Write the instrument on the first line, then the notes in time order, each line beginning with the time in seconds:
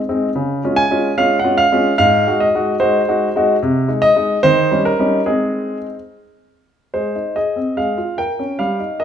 grand piano
0.09 G#3 C4 D#4
0.35 C#3
0.64 G#3 C#4 F4
0.76 G#5
0.90 G#3 C#4 F4
1.18 G#3 C#4 F4 F5
1.39 F#5
1.44 G#3 C#4 F4
1.57 F5
1.72 G#3 C#4 F4
1.98 G#2 F5
2.27 G#3 D#4 F#4
2.40 D#5
2.55 G#3 D#4 F#4
2.80 G#3 D#4 F#4 C5
3.08 G#3 D#4 F#4
3.36 G#3 D#4 F#4
3.62 C3
3.88 G#3 D#4
4.02 D#5
4.16 G#3 D#4
4.43 D#3 C5
4.71 G3 C#4 D#4
4.85 A#4
4.99 G3 C#4 D#4
5.26 G#3 C4 D#4 G#4
6.94 G#3 C5
7.16 D#4
7.36 G#4 D#5
7.56 C4
7.77 G#3 F5
7.98 F4
8.18 A#4 G5
8.39 C#4
8.59 G3 F5
8.80 D#4
9.00 A#4 D#5